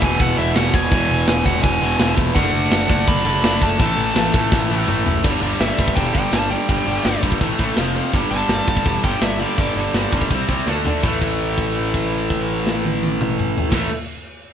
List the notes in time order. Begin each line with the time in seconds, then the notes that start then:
Already playing: E2 B2 E3
0.00 E1 E2 B2 E3 G#5, kick
0.19 E1 F#5, kick, crash
0.37 E1 E2 B2 E3 E5
0.55 E1 E2 B2 E3 F#5, snare, crash
0.74 E1 G#5, kick
0.91 E1 E2 B2 E3, kick, crash
1.09 E1
1.27 E1 G#5, snare, crash
1.45 E1 E2 B2 E3 F#5, kick
1.63 E1 G#5, kick, crash
1.81 E1 E2 B2 E3
1.99 E1 E2 B2 E3, snare, crash
2.17 E1, kick
2.35 F#1 D3 A3 D4 F#5, kick, crash
2.53 F#1
2.71 F#1, snare, crash
2.88 F#1 D3 A3 D4, kick
3.08 F#1 B5, kick, crash
3.24 F#1 D3 A3 D4
3.43 F#1 D3 A3 D4, snare, crash
3.62 F#1 A5, kick
3.79 A1 A2 E3 A3, kick, crash
3.97 A1
4.15 A1, snare, crash
4.32 A1 A2 E3 A3, kick
4.52 A1, kick, snare
4.70 A1 A2 E3 A3
4.87 A1 A2 E3 A3, mid tom
5.05 F#1, floor tom
5.24 G1 G2 D3 G3, kick, crash
5.42 G1 G2 D3 G3, open hi-hat
5.60 G1 G2 D3 G3 E5, snare, open hi-hat
5.78 G1 G2 D3 G3, kick, open hi-hat
5.88 kick
5.95 E1 G2 D3 G3 G5, kick, open hi-hat
6.14 G1 G2 D3 G3 G5, kick, open hi-hat
6.32 G1 G2 D3 G3 A5, snare, open hi-hat
6.50 G2 D3 G3 G5, open hi-hat
6.68 G1 G2 D3 G3, kick, open hi-hat
6.86 G1 G2 D3 G3, open hi-hat
7.04 G1 G2 D3 G3, snare, open hi-hat
7.22 G1 G2 D3 G3, kick, open hi-hat
7.32 kick
7.40 A1 A2 E3 A3, kick, open hi-hat
7.59 A1 A2 E3 A3, kick, open hi-hat
7.77 F1 F2 C3 F3, snare, open hi-hat
7.95 F2 C3 F3, open hi-hat
8.13 G1 G2 D3 G3, kick, open hi-hat
8.31 G1 G2 D3 G3 A5, open hi-hat
8.49 G1 G2 D3 G3, snare, open hi-hat
8.68 G1 G2 D3 G3, kick, open hi-hat
8.77 kick
8.86 E1 G2 D3 G3, kick, open hi-hat
9.04 G1 G2 D3 G3 G5, kick, open hi-hat
9.21 G1 G2 D3 G3 E5, snare, open hi-hat
9.40 G2 D3 G3 D5, open hi-hat
9.57 G1 G2 D3 G3, kick, open hi-hat
9.75 G1 G2 D3 G3, open hi-hat
9.94 G1 G2 D3 G3, snare, open hi-hat
10.12 G1 G2 D3 G3, kick, open hi-hat
10.21 kick
10.30 C2 C3 G3 C4, kick, open hi-hat
10.48 C2 C3 G3 C4, kick, open hi-hat
10.66 D2 D3 A3 D4, snare
10.84 D3 A3 D4, floor tom
11.02 A1 A2 E3 A3, kick, crash
11.21 kick, crash
11.39 crash
11.58 kick, crash
11.76 crash
11.94 kick, crash
12.12 crash
12.30 kick, crash
12.48 crash
12.67 snare
12.85 high tom
13.03 high tom
13.21 mid tom
13.39 mid tom
13.58 floor tom
13.71 A1 A2 E3, kick, snare, crash
13.75 A3